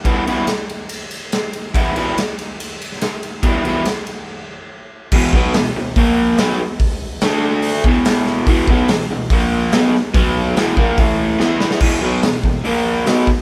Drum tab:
CC |----------------|----------------|----------------|x---------------|
RD |x-x-x-x-x-x-x-x-|x-x-x-x-x-x-x-x-|x-x-x-x---------|----------------|
HH |----------------|----------------|----------------|----o---o---o---|
SD |----o-------o---|----o-o----oo---|----o-----------|----o-------o---|
BD |o---------------|o---------------|o---------------|o-o-----o-------|

CC |----------------|----------------|----------------|x---------------|
RD |----------------|----------------|----------------|----------------|
HH |o---o---o---o---|o---o---o---o---|o---o---o-------|----o---o---o---|
SD |----o-------o-o-|----o-------o-o-|----o-------o-oo|----o-------o-o-|
BD |o---------o-----|o-o-----o-------|o-----o-o-------|o-----o-------o-|